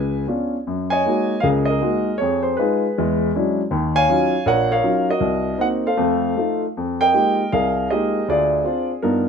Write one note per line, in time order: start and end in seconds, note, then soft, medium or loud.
0.00 0.23 C#2 medium
0.00 0.23 B4 medium
0.00 0.25 G#5 medium
0.27 0.55 B3 soft
0.27 0.55 C#4 soft
0.27 0.55 D4 soft
0.27 0.55 F4 medium
0.67 1.01 F#2 medium
0.90 1.65 C#5 medium
0.90 1.64 D#5 medium
0.90 1.45 G#5 loud
1.06 1.32 G#3 medium
1.06 1.33 A#3 medium
1.06 1.32 D#4 medium
1.06 1.33 F#4 medium
1.40 1.77 C#2 medium
1.40 1.77 C#3 medium
1.40 1.68 G#4 medium
1.40 1.69 A#4 medium
1.40 1.46 F5 medium
1.65 2.15 D#5 medium
1.70 2.18 G#4 medium
1.70 2.18 A#4 medium
1.81 2.09 G#3 medium
1.81 2.09 A#3 soft
1.81 2.08 D#4 soft
1.81 2.09 F#4 medium
2.18 2.53 F2 medium
2.18 2.42 C#5 medium
2.23 2.60 G#4 medium
2.43 2.56 C5 medium
2.57 2.85 G#3 medium
2.57 2.85 D#4 medium
2.57 2.85 F4 medium
2.57 3.28 B4 medium
2.62 3.31 G#4 medium
2.98 3.29 E2 medium
2.98 3.30 G#3 medium
3.35 3.60 F#3 medium
3.35 3.60 G#3 soft
3.35 3.60 C#4 medium
3.35 3.60 D4 soft
3.35 3.60 E4 medium
3.71 4.03 D#2 medium
3.71 4.03 D#3 medium
3.95 4.45 C#5 medium
3.95 4.66 F5 medium
3.95 4.47 G#5 loud
4.08 4.34 F#3 medium
4.08 4.34 C#4 medium
4.08 4.34 D#4 medium
4.08 4.34 F4 medium
4.46 4.78 A#1 medium
4.46 4.70 A#4 medium
4.46 4.70 C#5 medium
4.46 4.72 F#5 loud
4.71 5.08 A#4 medium
4.71 5.18 C#5 medium
4.71 5.06 F5 medium
4.83 5.09 F#3 medium
4.83 5.09 C#4 soft
4.83 5.09 D#4 medium
4.83 5.09 F4 medium
5.09 5.81 F#4 medium
5.09 5.81 A#4 medium
5.09 5.62 D#5 medium
5.21 5.54 C2 medium
5.58 5.85 A#3 medium
5.58 5.85 C4 medium
5.58 5.85 D#4 medium
5.58 5.67 F#5 medium
5.86 6.60 A4 medium
5.86 6.60 C5 medium
5.86 6.61 F5 medium
5.97 6.32 F2 medium
5.97 6.32 A3 medium
6.37 6.64 A3 medium
6.37 6.65 D#4 soft
6.37 6.65 F4 medium
6.77 7.10 F2 medium
7.01 7.52 A#4 medium
7.01 7.74 D#5 medium
7.01 7.49 G5 loud
7.14 7.41 G#3 medium
7.14 7.41 A#3 soft
7.14 7.41 D#4 soft
7.14 7.41 F4 soft
7.14 7.41 G4 medium
7.52 7.86 C2 medium
7.52 7.90 G#4 medium
7.52 8.25 A#4 medium
7.52 7.88 F5 medium
7.90 8.18 G#3 soft
7.90 8.18 A#3 soft
7.90 8.18 D#4 soft
7.90 8.18 F4 soft
7.90 8.26 G4 medium
7.90 8.26 G#4 medium
7.90 8.26 D#5 medium
8.28 8.60 D2 medium
8.28 8.64 F4 medium
8.28 8.99 G#4 medium
8.28 8.86 D5 medium
8.64 8.90 C4 medium
8.64 8.91 D4 soft
8.64 8.91 F4 medium
9.02 9.29 G2 medium
9.02 9.29 B3 medium
9.02 9.29 D#4 soft
9.02 9.29 F4 medium
9.02 9.29 A#4 medium